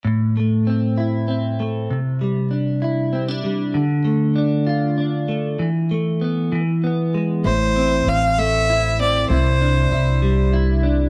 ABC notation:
X:1
M:6/8
L:1/16
Q:3/8=65
K:Am
V:1 name="Violin"
z12 | z12 | z12 | z12 |
c4 f2 e4 d2 | c8 z4 |]
V:2 name="Clean electric guitar"
A,,2 A,2 C2 E2 C2 A,2 | C,2 G,2 D2 E2 C D G,2 | D,2 A,2 D2 F2 D2 A,2 | E,2 A,2 B,2 E,2 B,2 ^G,2 |
[A,,E]2 C4 A,2 E2 C2 | [C,E]2 D2 E2 G,2 E2 D2 |]
V:3 name="Upright bass" clef=bass
z12 | z12 | z12 | z12 |
A,,,4 A,,,8 | C,,4 C,,8 |]